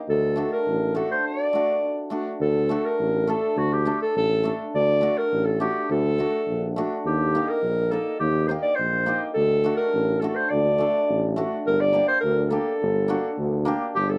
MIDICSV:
0, 0, Header, 1, 4, 480
1, 0, Start_track
1, 0, Tempo, 580833
1, 70, Time_signature, 2, 2, 24, 8
1, 5830, Tempo, 574163
1, 11789, End_track
2, 0, Start_track
2, 0, Title_t, "Clarinet"
2, 0, Program_c, 0, 71
2, 79, Note_on_c, 0, 69, 91
2, 411, Note_off_c, 0, 69, 0
2, 435, Note_on_c, 0, 70, 80
2, 770, Note_off_c, 0, 70, 0
2, 793, Note_on_c, 0, 69, 75
2, 905, Note_off_c, 0, 69, 0
2, 922, Note_on_c, 0, 72, 75
2, 1030, Note_off_c, 0, 72, 0
2, 1047, Note_on_c, 0, 74, 87
2, 1729, Note_off_c, 0, 74, 0
2, 1995, Note_on_c, 0, 69, 86
2, 2359, Note_on_c, 0, 70, 88
2, 2371, Note_off_c, 0, 69, 0
2, 2723, Note_on_c, 0, 69, 83
2, 2736, Note_off_c, 0, 70, 0
2, 2961, Note_on_c, 0, 66, 77
2, 2973, Note_off_c, 0, 69, 0
2, 3081, Note_on_c, 0, 67, 74
2, 3094, Note_off_c, 0, 66, 0
2, 3319, Note_off_c, 0, 67, 0
2, 3323, Note_on_c, 0, 69, 89
2, 3432, Note_off_c, 0, 69, 0
2, 3443, Note_on_c, 0, 69, 97
2, 3774, Note_off_c, 0, 69, 0
2, 3923, Note_on_c, 0, 74, 101
2, 4277, Note_on_c, 0, 70, 93
2, 4290, Note_off_c, 0, 74, 0
2, 4507, Note_on_c, 0, 69, 81
2, 4520, Note_off_c, 0, 70, 0
2, 4628, Note_off_c, 0, 69, 0
2, 4633, Note_on_c, 0, 67, 78
2, 4856, Note_off_c, 0, 67, 0
2, 4888, Note_on_c, 0, 69, 90
2, 5565, Note_off_c, 0, 69, 0
2, 5838, Note_on_c, 0, 67, 82
2, 6195, Note_on_c, 0, 70, 98
2, 6208, Note_off_c, 0, 67, 0
2, 6548, Note_on_c, 0, 69, 74
2, 6560, Note_off_c, 0, 70, 0
2, 6776, Note_off_c, 0, 69, 0
2, 6781, Note_on_c, 0, 67, 85
2, 7016, Note_on_c, 0, 72, 70
2, 7029, Note_off_c, 0, 67, 0
2, 7034, Note_off_c, 0, 72, 0
2, 7139, Note_on_c, 0, 74, 94
2, 7251, Note_on_c, 0, 72, 92
2, 7264, Note_off_c, 0, 74, 0
2, 7625, Note_off_c, 0, 72, 0
2, 7741, Note_on_c, 0, 69, 98
2, 8084, Note_off_c, 0, 69, 0
2, 8098, Note_on_c, 0, 70, 89
2, 8463, Note_on_c, 0, 69, 74
2, 8475, Note_off_c, 0, 70, 0
2, 8523, Note_off_c, 0, 69, 0
2, 8523, Note_on_c, 0, 69, 69
2, 8588, Note_on_c, 0, 72, 74
2, 8601, Note_off_c, 0, 69, 0
2, 8711, Note_on_c, 0, 74, 89
2, 8723, Note_off_c, 0, 72, 0
2, 9435, Note_off_c, 0, 74, 0
2, 9686, Note_on_c, 0, 70, 100
2, 9800, Note_on_c, 0, 74, 101
2, 9813, Note_off_c, 0, 70, 0
2, 10027, Note_off_c, 0, 74, 0
2, 10032, Note_on_c, 0, 72, 94
2, 10133, Note_off_c, 0, 72, 0
2, 10138, Note_on_c, 0, 70, 89
2, 10337, Note_off_c, 0, 70, 0
2, 10337, Note_on_c, 0, 70, 52
2, 10379, Note_on_c, 0, 69, 72
2, 10392, Note_off_c, 0, 70, 0
2, 11343, Note_off_c, 0, 69, 0
2, 11597, Note_on_c, 0, 67, 100
2, 11718, Note_on_c, 0, 69, 79
2, 11731, Note_off_c, 0, 67, 0
2, 11789, Note_off_c, 0, 69, 0
2, 11789, End_track
3, 0, Start_track
3, 0, Title_t, "Hammered dulcimer"
3, 0, Program_c, 1, 15
3, 295, Note_on_c, 1, 57, 54
3, 305, Note_on_c, 1, 62, 55
3, 312, Note_on_c, 1, 66, 58
3, 423, Note_off_c, 1, 57, 0
3, 429, Note_off_c, 1, 62, 0
3, 432, Note_off_c, 1, 66, 0
3, 783, Note_on_c, 1, 57, 57
3, 790, Note_on_c, 1, 62, 48
3, 797, Note_on_c, 1, 66, 63
3, 908, Note_off_c, 1, 57, 0
3, 912, Note_off_c, 1, 62, 0
3, 916, Note_off_c, 1, 66, 0
3, 1264, Note_on_c, 1, 57, 55
3, 1279, Note_on_c, 1, 62, 53
3, 1284, Note_on_c, 1, 66, 60
3, 1390, Note_off_c, 1, 57, 0
3, 1397, Note_off_c, 1, 62, 0
3, 1400, Note_off_c, 1, 66, 0
3, 1737, Note_on_c, 1, 57, 60
3, 1746, Note_on_c, 1, 62, 62
3, 1753, Note_on_c, 1, 66, 57
3, 1867, Note_off_c, 1, 57, 0
3, 1871, Note_off_c, 1, 62, 0
3, 1875, Note_off_c, 1, 66, 0
3, 2225, Note_on_c, 1, 57, 62
3, 2234, Note_on_c, 1, 62, 53
3, 2242, Note_on_c, 1, 66, 68
3, 2351, Note_off_c, 1, 57, 0
3, 2356, Note_off_c, 1, 62, 0
3, 2359, Note_off_c, 1, 66, 0
3, 2706, Note_on_c, 1, 57, 63
3, 2713, Note_on_c, 1, 62, 53
3, 2723, Note_on_c, 1, 69, 67
3, 2831, Note_off_c, 1, 57, 0
3, 2835, Note_off_c, 1, 62, 0
3, 2840, Note_off_c, 1, 69, 0
3, 3185, Note_on_c, 1, 57, 57
3, 3191, Note_on_c, 1, 62, 54
3, 3197, Note_on_c, 1, 69, 64
3, 3311, Note_off_c, 1, 57, 0
3, 3314, Note_off_c, 1, 62, 0
3, 3317, Note_off_c, 1, 69, 0
3, 3664, Note_on_c, 1, 57, 58
3, 3673, Note_on_c, 1, 62, 52
3, 3681, Note_on_c, 1, 69, 69
3, 3790, Note_off_c, 1, 57, 0
3, 3795, Note_off_c, 1, 62, 0
3, 3798, Note_off_c, 1, 69, 0
3, 4139, Note_on_c, 1, 57, 59
3, 4145, Note_on_c, 1, 62, 53
3, 4155, Note_on_c, 1, 66, 68
3, 4267, Note_off_c, 1, 57, 0
3, 4270, Note_off_c, 1, 62, 0
3, 4275, Note_off_c, 1, 66, 0
3, 4627, Note_on_c, 1, 57, 52
3, 4629, Note_on_c, 1, 62, 51
3, 4638, Note_on_c, 1, 66, 64
3, 4750, Note_off_c, 1, 57, 0
3, 4751, Note_off_c, 1, 62, 0
3, 4756, Note_off_c, 1, 66, 0
3, 5110, Note_on_c, 1, 57, 53
3, 5118, Note_on_c, 1, 62, 46
3, 5123, Note_on_c, 1, 66, 64
3, 5231, Note_off_c, 1, 57, 0
3, 5234, Note_off_c, 1, 62, 0
3, 5237, Note_off_c, 1, 66, 0
3, 5589, Note_on_c, 1, 57, 62
3, 5601, Note_on_c, 1, 62, 63
3, 5603, Note_on_c, 1, 66, 73
3, 5709, Note_off_c, 1, 57, 0
3, 5715, Note_off_c, 1, 62, 0
3, 5716, Note_off_c, 1, 66, 0
3, 6075, Note_on_c, 1, 58, 63
3, 6080, Note_on_c, 1, 63, 54
3, 6089, Note_on_c, 1, 67, 63
3, 6193, Note_off_c, 1, 58, 0
3, 6196, Note_off_c, 1, 63, 0
3, 6200, Note_off_c, 1, 67, 0
3, 6548, Note_on_c, 1, 58, 55
3, 6553, Note_on_c, 1, 63, 51
3, 6564, Note_on_c, 1, 70, 57
3, 6671, Note_off_c, 1, 58, 0
3, 6673, Note_off_c, 1, 63, 0
3, 6679, Note_off_c, 1, 70, 0
3, 7028, Note_on_c, 1, 58, 57
3, 7036, Note_on_c, 1, 63, 47
3, 7047, Note_on_c, 1, 67, 64
3, 7152, Note_off_c, 1, 58, 0
3, 7156, Note_off_c, 1, 63, 0
3, 7162, Note_off_c, 1, 67, 0
3, 7507, Note_on_c, 1, 58, 58
3, 7516, Note_on_c, 1, 63, 51
3, 7523, Note_on_c, 1, 67, 64
3, 7633, Note_off_c, 1, 58, 0
3, 7637, Note_off_c, 1, 63, 0
3, 7641, Note_off_c, 1, 67, 0
3, 7988, Note_on_c, 1, 57, 60
3, 7995, Note_on_c, 1, 62, 55
3, 8005, Note_on_c, 1, 66, 65
3, 8114, Note_off_c, 1, 57, 0
3, 8117, Note_off_c, 1, 62, 0
3, 8122, Note_off_c, 1, 66, 0
3, 8476, Note_on_c, 1, 57, 52
3, 8479, Note_on_c, 1, 62, 53
3, 8494, Note_on_c, 1, 66, 67
3, 8597, Note_off_c, 1, 57, 0
3, 8599, Note_off_c, 1, 62, 0
3, 8606, Note_off_c, 1, 66, 0
3, 8947, Note_on_c, 1, 57, 54
3, 8962, Note_on_c, 1, 62, 50
3, 8966, Note_on_c, 1, 69, 60
3, 9073, Note_off_c, 1, 57, 0
3, 9080, Note_off_c, 1, 62, 0
3, 9082, Note_off_c, 1, 69, 0
3, 9431, Note_on_c, 1, 57, 68
3, 9441, Note_on_c, 1, 62, 55
3, 9445, Note_on_c, 1, 66, 67
3, 9555, Note_off_c, 1, 57, 0
3, 9560, Note_off_c, 1, 62, 0
3, 9561, Note_off_c, 1, 66, 0
3, 9904, Note_on_c, 1, 58, 52
3, 9912, Note_on_c, 1, 62, 51
3, 9920, Note_on_c, 1, 67, 66
3, 10031, Note_off_c, 1, 58, 0
3, 10035, Note_off_c, 1, 62, 0
3, 10039, Note_off_c, 1, 67, 0
3, 10387, Note_on_c, 1, 58, 60
3, 10398, Note_on_c, 1, 62, 47
3, 10404, Note_on_c, 1, 67, 63
3, 10511, Note_off_c, 1, 58, 0
3, 10517, Note_off_c, 1, 62, 0
3, 10520, Note_off_c, 1, 67, 0
3, 10868, Note_on_c, 1, 58, 63
3, 10878, Note_on_c, 1, 62, 58
3, 10883, Note_on_c, 1, 66, 69
3, 10990, Note_off_c, 1, 58, 0
3, 10995, Note_off_c, 1, 62, 0
3, 10998, Note_off_c, 1, 66, 0
3, 11345, Note_on_c, 1, 58, 74
3, 11352, Note_on_c, 1, 62, 61
3, 11367, Note_on_c, 1, 67, 77
3, 11468, Note_off_c, 1, 58, 0
3, 11471, Note_off_c, 1, 62, 0
3, 11478, Note_off_c, 1, 67, 0
3, 11789, End_track
4, 0, Start_track
4, 0, Title_t, "Tuba"
4, 0, Program_c, 2, 58
4, 70, Note_on_c, 2, 38, 84
4, 359, Note_off_c, 2, 38, 0
4, 553, Note_on_c, 2, 33, 70
4, 842, Note_off_c, 2, 33, 0
4, 1983, Note_on_c, 2, 38, 87
4, 2275, Note_off_c, 2, 38, 0
4, 2471, Note_on_c, 2, 33, 75
4, 2761, Note_off_c, 2, 33, 0
4, 2947, Note_on_c, 2, 38, 90
4, 3238, Note_off_c, 2, 38, 0
4, 3432, Note_on_c, 2, 33, 80
4, 3721, Note_off_c, 2, 33, 0
4, 3920, Note_on_c, 2, 38, 82
4, 4206, Note_off_c, 2, 38, 0
4, 4399, Note_on_c, 2, 33, 81
4, 4685, Note_off_c, 2, 33, 0
4, 4877, Note_on_c, 2, 38, 94
4, 5163, Note_off_c, 2, 38, 0
4, 5351, Note_on_c, 2, 34, 80
4, 5638, Note_off_c, 2, 34, 0
4, 5827, Note_on_c, 2, 39, 86
4, 6118, Note_off_c, 2, 39, 0
4, 6303, Note_on_c, 2, 34, 78
4, 6595, Note_off_c, 2, 34, 0
4, 6791, Note_on_c, 2, 39, 99
4, 7081, Note_off_c, 2, 39, 0
4, 7280, Note_on_c, 2, 34, 68
4, 7568, Note_off_c, 2, 34, 0
4, 7759, Note_on_c, 2, 38, 84
4, 8047, Note_off_c, 2, 38, 0
4, 8239, Note_on_c, 2, 33, 76
4, 8527, Note_off_c, 2, 33, 0
4, 8721, Note_on_c, 2, 38, 86
4, 9009, Note_off_c, 2, 38, 0
4, 9205, Note_on_c, 2, 33, 79
4, 9491, Note_off_c, 2, 33, 0
4, 9681, Note_on_c, 2, 31, 80
4, 9967, Note_off_c, 2, 31, 0
4, 10164, Note_on_c, 2, 38, 80
4, 10449, Note_off_c, 2, 38, 0
4, 10648, Note_on_c, 2, 31, 92
4, 10931, Note_off_c, 2, 31, 0
4, 11117, Note_on_c, 2, 38, 84
4, 11402, Note_off_c, 2, 38, 0
4, 11596, Note_on_c, 2, 31, 92
4, 11789, Note_off_c, 2, 31, 0
4, 11789, End_track
0, 0, End_of_file